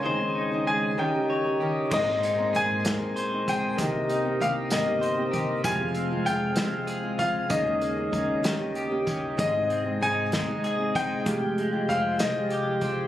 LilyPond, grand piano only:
\new Staff \with { instrumentName = "Grand piano" } { \time 6/8 \key aes \major \tempo 4. = 64 aes''4 aes''8 g''4 r8 | ees''4 aes''4. g''8~ | g''4 f''8 ees''4 r8 | aes''4 g''4. f''8 |
ees''2 r4 | ees''4 aes''4. g''8~ | g''4 f''8 ees''4 r8 | }